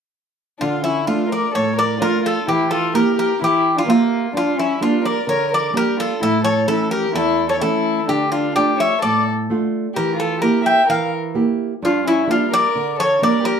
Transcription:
0.59 nylon-string guitar D3, violin D4, bouzouki F4
0.84 violin C#4, bouzouki E4
1.07 nylon-string guitar A3 D4 F4, violin D4, bouzouki F4
1.30 violin A#4, bouzouki D5
1.55 nylon-string guitar A2, violin A4, bouzouki C#5
1.77 violin A#4, bouzouki D5
2.01 nylon-string guitar A3 D4 F4, violin F4, bouzouki A#4
2.24 violin F4, bouzouki A4
2.48 nylon-string guitar E3, violin E4, bouzouki G4
2.71 violin F4, bouzouki A4
2.94 nylon-string guitar A#3 E4 G4, violin G4, bouzouki A#4
3.17 violin G4, bouzouki A#4
3.42 nylon-string guitar E3, violin E4, bouzouki G4
3.76 violin D4, bouzouki F4
3.87 violin A#3, nylon-string guitar A#3 G4 E5, bouzouki F4
4.33 nylon-string guitar G2, violin D4, bouzouki F4
4.58 violin C#4, bouzouki E4
4.81 nylon-string guitar G3 A#3 D4, violin D4, bouzouki F4
5.04 violin A#4, bouzouki D5
5.27 nylon-string guitar D3, violin A#4, bouzouki C#5
5.52 violin A#4, bouzouki D5
5.73 nylon-string guitar G3 A#3 D4, bouzouki A#4
5.77 violin G4
6.00 violin F4, bouzouki A4
6.22 nylon-string guitar A2, violin E4, bouzouki A4
6.44 violin A4, bouzouki C#5
6.67 nylon-string guitar E3 A3 C#4, violin E4, bouzouki A4
6.91 violin G4, bouzouki A#4
7.14 nylon-string guitar E2, violin E4, bouzouki A4
7.49 violin A4, bouzouki C#5
7.61 nylon-string guitar E3 A3 C#4, violin E4, bouzouki A4
8.08 nylon-string guitar D3, violin D4, bouzouki G4
8.32 violin D4, bouzouki F4
8.56 nylon-string guitar A3 D4 F4, violin D4, bouzouki G4
8.79 violin C#5, bouzouki E5
9.02 nylon-string guitar A2, violin A4, bouzouki D5
9.50 nylon-string guitar A3 D4 F4
9.94 nylon-string guitar E3, violin G4, bouzouki A#4
10.17 violin F4, bouzouki A4
10.41 nylon-string guitar A#3 E4 G4, violin G4, bouzouki A#4
10.65 violin E5, bouzouki G5
10.88 nylon-string guitar E3, violin A#4, bouzouki F5
11.34 nylon-string guitar A#3 E4 G4
11.82 nylon-string guitar G2, violin D4, bouzouki F4
12.07 violin C#4, bouzouki E4
12.27 nylon-string guitar G3 A#3 D4, violin D4, bouzouki F4
12.53 violin A#4, bouzouki D5
12.75 nylon-string guitar D3
12.99 violin A4, bouzouki C#5
13.22 nylon-string guitar G3 A#3 D4, violin A#4, bouzouki D5
13.43 violin G4, bouzouki A#4

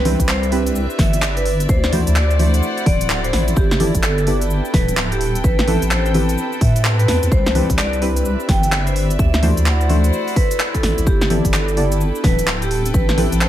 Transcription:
Already playing: wobble bass C2, string section C4 A4 B4 G5, ambient pad D4 E4 G4 B4
0.05 synth stab C4 D4 E4 G4 B4, open hi-hat, high conga
0.20 wobble bass C2, string section E5, kick, closed hi-hat, cabasa
0.28 vibraphone C5, clap, cabasa
0.43 string section D5, closed hi-hat, cabasa
0.52 synth stab C4 D4 E4 G4 B4, open hi-hat
0.67 closed hi-hat, cabasa
0.75 cabasa
0.90 cabasa
0.99 wobble bass G1, vibraphone E5, kick, snare, open hi-hat, high conga
1.13 closed hi-hat, cabasa
1.22 clap, cabasa
1.37 vibraphone B4, closed hi-hat, cabasa
1.46 open hi-hat
1.60 closed hi-hat, cabasa
1.69 ambient pad C4 F#4 A4, string section E4, vibraphone C5, kick, cabasa
1.84 snare, cabasa
1.92 synth stab A3 D4 E4 F#4 C5, open hi-hat, high conga
2.07 wobble bass D2, closed hi-hat, cabasa
2.16 vibraphone D5, clap, cabasa
2.21 string section C5
2.31 closed hi-hat, cabasa
2.35 string section F#5
2.39 synth stab A3 D4 E4 F#4 C5, open hi-hat, high conga
2.54 closed hi-hat, cabasa
2.63 cabasa
2.78 closed hi-hat, cabasa
2.86 wobble bass D1, vibraphone D5, kick, open hi-hat, high conga
3.01 closed hi-hat, cabasa
3.10 clap, cabasa
3.24 vibraphone C5, closed hi-hat, cabasa
3.33 wobble bass A1, snare, open hi-hat
3.48 closed hi-hat, cabasa
3.56 ambient pad B3 D4 E4, vibraphone G4, kick, cabasa
3.71 snare, cabasa
3.80 synth stab B3 E4 G4 A4 D5, string section A4, open hi-hat, high conga
3.95 wobble bass G1, kick, closed hi-hat, cabasa
4.01 vibraphone A4, string section B4, clap, cabasa
4.18 closed hi-hat, cabasa
4.27 synth stab B3 E4 G4 A4 D5, open hi-hat
4.42 string section G5, closed hi-hat, cabasa
4.50 cabasa
4.65 cabasa
4.74 wobble bass D1, vibraphone B4, kick, snare, open hi-hat, high conga
4.89 closed hi-hat, cabasa
4.97 clap, cabasa
5.12 vibraphone G4, closed hi-hat, cabasa
5.21 open hi-hat
5.35 closed hi-hat, cabasa
5.44 wobble bass A1, string section C4, ambient pad C4 E4 G4 B4, vibraphone B4, kick, cabasa
5.59 snare, cabasa
5.67 synth stab C4 E4 G4 A4 B4, open hi-hat, high conga
5.82 wobble bass A1, closed hi-hat, cabasa
5.91 vibraphone C5, clap, cabasa
6.06 closed hi-hat, cabasa
6.14 synth stab C4 E4 G4 A4 B4, open hi-hat, high conga
6.29 closed hi-hat, cabasa
6.38 cabasa
6.53 cabasa
6.61 wobble bass A2, vibraphone E5, kick, open hi-hat
6.76 closed hi-hat, cabasa
6.85 clap, cabasa
6.99 vibraphone B4, closed hi-hat, cabasa
7.08 wobble bass E2, snare, open hi-hat
7.23 closed hi-hat, cabasa
7.31 wobble bass C2, ambient pad D4 G4, vibraphone C5, kick, cabasa
7.46 snare, cabasa
7.55 synth stab C4 D4 E4 G4 B4, open hi-hat, high conga
7.70 wobble bass C2, kick, closed hi-hat, cabasa
7.78 vibraphone D5, clap, cabasa
7.93 closed hi-hat, cabasa
8.02 synth stab C4 D4 E4 G4 B4, open hi-hat
8.17 string section D5 E5, closed hi-hat, cabasa
8.25 cabasa
8.40 cabasa
8.49 wobble bass G1, vibraphone G5, kick, snare, open hi-hat, high conga
8.63 closed hi-hat, cabasa
8.72 clap, cabasa
8.87 vibraphone C5, closed hi-hat, cabasa
8.96 open hi-hat
9.10 closed hi-hat, cabasa
9.19 wobble bass D2, ambient pad C4 F#4 A4, string section E4, vibraphone E5, kick, cabasa
9.34 snare, cabasa
9.43 synth stab A3 D4 E4 F#4 C5, open hi-hat, high conga
9.57 wobble bass D2, closed hi-hat, cabasa
9.66 vibraphone F#5, string section F#5, clap, cabasa
9.81 string section C5, closed hi-hat, cabasa
9.89 synth stab A3 D4 E4 F#4 C5, open hi-hat, high conga
10.04 closed hi-hat, cabasa
10.13 cabasa
10.28 open hi-hat, cabasa
10.36 vibraphone B4, kick, open hi-hat
10.51 closed hi-hat, cabasa
10.60 clap, cabasa
10.74 vibraphone A4, kick, closed hi-hat, cabasa
10.83 wobble bass A1, snare, open hi-hat
10.98 wobble bass A1, closed hi-hat, cabasa
11.06 wobble bass G1, ambient pad B3 D4 A4, vibraphone G4, kick, cabasa
11.21 snare, cabasa
11.30 synth stab B3 E4 G4 A4 D5, open hi-hat, high conga
11.45 wobble bass G1, kick, closed hi-hat, cabasa
11.54 vibraphone A4, clap, cabasa
11.68 string section A4, closed hi-hat, cabasa
11.74 synth stab B3 E4 G4 A4 D5, string section G5, open hi-hat
11.92 string section B4, closed hi-hat, cabasa
12.01 cabasa
12.15 cabasa
12.24 wobble bass D1, vibraphone B4, kick, snare, open hi-hat, high conga
12.39 closed hi-hat, cabasa
12.47 clap, cabasa
12.62 vibraphone G4, closed hi-hat, cabasa
12.71 open hi-hat
12.86 closed hi-hat, cabasa
12.94 wobble bass A1, string section C4, ambient pad C4 G4 B4, vibraphone B4, kick, cabasa
13.09 snare, cabasa
13.18 synth stab C4 E4 G4 A4 B4, open hi-hat, high conga
13.32 wobble bass A1, closed hi-hat, cabasa
13.41 vibraphone C5, clap, cabasa

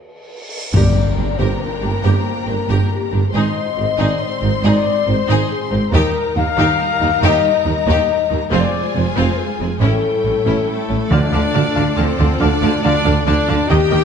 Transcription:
Already playing: cymbal swell
0.73 tuba G1, double bass section G1, timpani G2, cello section G2, string section A#3 D4 A#4 G5, viola section G4, violin section A#4 A#5, french horn section D5, impact
1.17 tuba G1, double bass section G1, cello section G2, violin section D4, viola section G4
1.36 tuba G1, double bass section G1, cello section G2, viola section G4, violin section A#4, french horn section C5
1.58 french horn section A#4
1.82 double bass section G1, tuba G1, cello section G2, violin section D4, viola section G4
2.03 double bass section G1, tuba G1, cello section G2, viola section G4, violin section A#4, french horn section C5
2.47 tuba G1, double bass section G1, cello section G2, violin section D4, viola section G4, french horn section A#4
2.68 tuba G1, double bass section G1, cello section G2, viola section G4, violin section A#4
2.90 french horn section G4
3.11 tuba G1, double bass section G1, cello section G2, violin section D4, viola section G4
3.33 tuba G#1, double bass section G#1, cello section G#2, string section G#3 C4 C5, viola section D#4, violin section G#4 C6, french horn section D#5
3.77 tuba G#1, double bass section G#1, cello section G#2, violin section C4, viola section D#4
3.98 tuba G#1, double bass section G#1, cello section G#2, viola section D#4, violin section G#4, french horn section D5
4.21 french horn section C5
4.41 tuba G#1, double bass section G#1, cello section G#2, violin section C4, viola section D#4
4.62 tuba G#1, double bass section G#1, cello section G#2, viola section D#4, violin section G#4, french horn section D5
5.06 tuba G#1, double bass section G#1, cello section G#2, violin section C4, viola section D#4, french horn section C5
5.27 tuba G#1, double bass section G#1, cello section G#2, viola section D#4, violin section G#4
5.51 french horn section G#4
5.70 tuba G#1, double bass section G#1, cello section G#2, violin section C4, viola section D#4, french horn section C5
5.92 tuba D#2, cello section D#2, double bass section D#2, string section G3 D#4 A#4, viola section D#4, violin section G4 A#5, french horn section A#4
6.35 tuba D#2, cello section D#2, double bass section D#2, violin section A#3, viola section D#4, french horn section F5
6.57 tuba D#2, cello section D#2, double bass section D#2, viola section D#4, violin section G4
7.00 tuba D#2, cello section D#2, double bass section D#2, violin section A#3, viola section D#4
7.22 tuba D#2, double bass section D#2, cello section D#2, viola section D#4, violin section G4, french horn section D#5
7.65 tuba D#2, cello section D#2, double bass section D#2, violin section A#3, viola section D#4, french horn section D#5
7.86 tuba D#2, double bass section D#2, cello section D#2, viola section D#4, violin section G4
8.29 tuba D#2, cello section D#2, double bass section D#2, violin section A#3, viola section D#4
8.51 tuba F1, double bass section F1, cello section F2, string section G#3 F4 G#4 C5, viola section C4, violin section F4 G#5, french horn section D5
8.94 tuba F1, double bass section F1, cello section F2, violin section G#3, viola section C4, french horn section C5
9.16 tuba F1, double bass section F1, cello section F2, viola section C4, violin section F4
9.38 french horn section G#4
9.59 tuba F1, double bass section F1, cello section F2, violin section G#3, viola section C4
9.81 tuba A1, double bass section A1, cello section A2, string section G3 E4 A4 C#5, viola section C#4, violin section E4 G5, french horn section A4
10.24 tuba A1, double bass section A1, cello section A2, violin section A3, viola section C#4
10.45 tuba A1, double bass section A1, cello section A2, viola section C#4, violin section E4
10.68 trumpet A3, french horn section A3, violin section A4
10.89 tuba A1, double bass section A1, cello section A2, violin section A3, viola section C#4
11.10 tuba D2, double bass section D2, cello section D3, timpani D3, string section A3 F4 A4 D5, french horn section D4, trumpet D4, viola section D5 F5, violin section D5 A5
11.31 tuba D2, double bass section D2, cello section D3, viola section D5 F5, violin section A5
11.53 tuba D2, double bass section D2, cello section D3, viola section D5 F5, violin section A5
11.75 tuba D2, double bass section D2, cello section D3, viola section D5 F5, violin section A5
11.96 tuba D2, double bass section D2, cello section D3, french horn section C4, trumpet C4, violin section C5 A5, viola section D5 F5
12.18 tuba D2, double bass section D2, cello section D3, viola section D5 F5, violin section A5
12.40 tuba D2, double bass section D2, cello section D3, french horn section D4, trumpet D4, viola section D5 F5, violin section D5 A5
12.61 tuba D2, double bass section D2, cello section D3, viola section D5 F5, violin section A5
12.82 tuba D2, double bass section D2, cello section D3, french horn section D4, trumpet D4, viola section D5 F5, violin section D5 A5
13.04 tuba D2, double bass section D2, cello section D3, viola section D5 F5, violin section A5
13.25 tuba D2, double bass section D2, cello section D3, french horn section D4, trumpet D4, viola section D5 F5, violin section D5 A5
13.47 tuba D2, double bass section D2, cello section D3, viola section D5 F5, violin section A5
13.68 tuba D#2, double bass section D#2, cello section D#3, string section A#3 D#4 G4 D#5, french horn section G4, trumpet G4, viola section A#4 D#5, violin section G5
13.91 tuba D#2, double bass section D#2, cello section D#3, viola section A#4 D#5, violin section G5

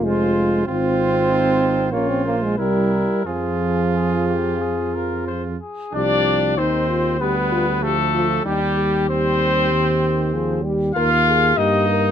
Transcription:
Already playing: tuba F1, french horn F4
0.04 trombone G#3, trumpet F4 C5
0.67 tuba G#1, trombone C4, trumpet F4 C5, french horn F4
1.30 french horn D#4
1.93 tuba A#1, trombone A#3, french horn C#4, trumpet F4 C#5
2.10 trombone C4
2.25 trombone A#3, trumpet C5
2.43 trombone G#3
2.58 tuba C2, trombone G3, trumpet E4 A#4, french horn A#4
3.25 tuba F2, trombone F3, trumpet F4 G#4, french horn G#4
3.94 trumpet G#4
4.28 trumpet G4
4.61 trumpet G#4
4.94 trumpet A#4
5.27 trumpet C5
5.61 trumpet G#4
5.93 tuba C2, trombone F3, trumpet D4 D5, french horn G4
6.57 tuba D#2, trombone D#3, trumpet C4 C5, french horn D#4
6.89 french horn F4
7.20 tuba D2, trombone G3, trumpet B3 B4, french horn G4
7.52 french horn F4
7.82 trombone F3, trumpet A3 A4, french horn G4
8.14 trombone F3, french horn F4
8.45 tuba D#2, trumpet G3 G4, trombone G3, french horn D#4
8.77 french horn G4
9.09 trombone G3, trumpet C4 C5
9.72 trombone D#3
10.33 trombone F3, french horn G#4
10.64 trombone G3, french horn G4
10.95 tuba D#2, trombone A#3, trumpet F4 F5, french horn A#4
11.27 french horn G#4
11.57 tuba G2, trombone A#3, trumpet D#4 D#5, french horn G4
11.88 french horn A#4

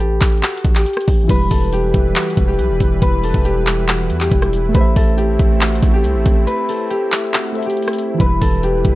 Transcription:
Already playing: 808-style bass A1, harp A4 B4
0.00 harp G4
0.21 808-style bass A1, kick, clap, closed hi-hat
0.27 closed hi-hat
0.32 closed hi-hat
0.38 closed hi-hat
0.43 harp F#4, clap, closed hi-hat
0.50 closed hi-hat
0.57 closed hi-hat
0.65 808-style bass A1, kick, closed hi-hat
0.75 harp G4, clap
0.86 closed hi-hat
0.93 cross-stick, closed hi-hat
1.01 closed hi-hat
1.08 808-style bass A1, kick, open hi-hat
1.24 synth keys E3 E4
1.29 808-style bass E1, analog synth pad E3 G3 E4 B4, synth keys G3, harp B4, kick, closed hi-hat, crash
1.35 synth keys B4
1.51 808-style bass E1, harp A4, kick, open hi-hat
1.73 harp G4, closed hi-hat
1.94 808-style bass E1, kick, closed hi-hat
2.16 harp F#4, clap, closed hi-hat
2.23 closed hi-hat
2.30 closed hi-hat
2.37 808-style bass E1, kick, closed hi-hat
2.48 harp G4
2.59 808-style bass B1, closed hi-hat
2.70 808-style bass E1
2.80 808-style bass E1, kick, closed hi-hat
3.02 808-style bass E1, harp B4, kick, closed hi-hat
3.24 harp A4, open hi-hat
3.34 808-style bass E1, kick
3.45 harp G4, closed hi-hat
3.67 clap, closed hi-hat
3.88 harp F#4, clap, closed hi-hat
4.10 808-style bass E2, closed hi-hat
4.21 harp G4, clap
4.32 808-style bass E1, kick, closed hi-hat
4.42 cross-stick, closed hi-hat
4.53 closed hi-hat
4.69 synth keys A3 A4
4.74 808-style bass A1, analog synth pad A3 C4, harp B4, synth keys C5, kick, closed hi-hat
4.81 synth keys E5
4.96 808-style bass A1, harp A4, kick, open hi-hat
5.17 harp G4, closed hi-hat
5.39 808-style bass A1, kick, closed hi-hat
5.61 harp F#4, clap, closed hi-hat
5.68 closed hi-hat
5.75 closed hi-hat
5.83 808-style bass A1, kick, closed hi-hat
5.94 harp G4
6.04 808-style bass C2, closed hi-hat
6.15 808-style bass A1
6.26 808-style bass A1, kick, closed hi-hat
6.47 harp B4, closed hi-hat
6.69 harp A4, open hi-hat
6.90 harp G4, closed hi-hat
7.12 clap, closed hi-hat
7.19 closed hi-hat
7.27 closed hi-hat
7.33 harp F#4, clap, closed hi-hat
7.52 synth keys A3 A4 C5, closed hi-hat
7.58 synth keys E5
7.62 harp G4, closed hi-hat
7.70 closed hi-hat
7.77 closed hi-hat
7.82 closed hi-hat
7.88 cross-stick, closed hi-hat
7.93 closed hi-hat
7.98 closed hi-hat
8.14 synth keys E3 E4
8.20 808-style bass E1, analog synth pad E3 G3 B4, synth keys G3, harp B4, kick, closed hi-hat
8.26 synth keys B4
8.41 808-style bass E1, harp A4, kick, open hi-hat
8.63 harp G4, closed hi-hat
8.85 808-style bass E1, kick, closed hi-hat

